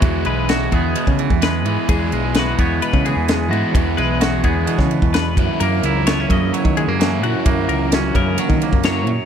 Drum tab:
RD |x-x-x-x-x-x-x-x-|x-x-x-x-x-x-x-x-|x-x-x-x-x-x-x-x-|x-x-x-x-x-x-x-x-|
SD |----o-------o---|----o-------o---|----o----o--o---|----o-------o---|
BD |o-----o--o-o----|o-----o--o------|o-----o--o-o--o-|------o--o------|

RD |x-x-x-x-x-x-x-x-|
SD |----o-------o---|
BD |o-----o--o-o----|